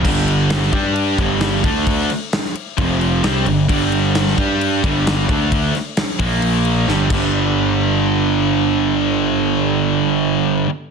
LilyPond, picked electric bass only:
\new Staff \with { instrumentName = "Picked electric bass" } { \clef bass \time 4/4 \key d \dorian \tempo 4 = 132 g,,4. g,4 g,,4 d,8~ | d,8 r4. f,,4 c,8 g,,8 | g,,4. g,4 g,,4 d,8~ | d,8 r4 bes,,4. g,,8 g,,8~ |
g,,1~ | g,,1 | }